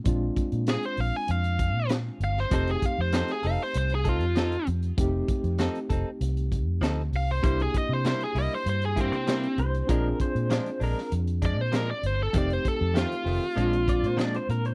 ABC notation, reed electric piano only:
X:1
M:4/4
L:1/8
Q:1/4=98
K:Fmix
V:1 name="Reed electric piano"
[_A,CDF]8 | [A,CEG]8 | [A,CEG]8 | [B,D=EG]4- [B,DEG] [B,DEG]3 |
[CDF_A]8 | [A,CEG]4 [_A,CDF]4 |]